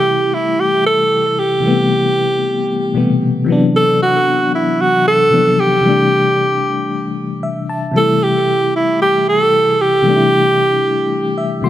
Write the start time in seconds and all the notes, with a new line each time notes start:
Already playing: C3 E3 G3 A3 E4 G4
0.34 E4
0.60 G4
0.86 A4
1.39 G4
1.60 C3 E3 G3
1.66 A3 B3
2.94 B2 E3 G3 A3 B3
3.00 C3
3.44 C3 E3 F#3
3.50 B3 D4
3.76 A4
4.02 F#4
4.55 E4
4.81 F#4
5.07 A4
5.31 C3 E3 F3 B3 D4
5.39 F#3
5.60 G4
5.81 C3 E3 G3
5.87 A3 D4
7.43 E5
7.69 A5
7.92 C3 E3 G3
7.97 A3 E4 A4
8.23 G4
8.76 E4
9.02 G4
9.28 A4
9.81 G4
10.02 C3 E3 G3
10.08 A3 D4
10.16 E4
11.38 E5
11.62 C3 E3 G3 A3 F#4 C6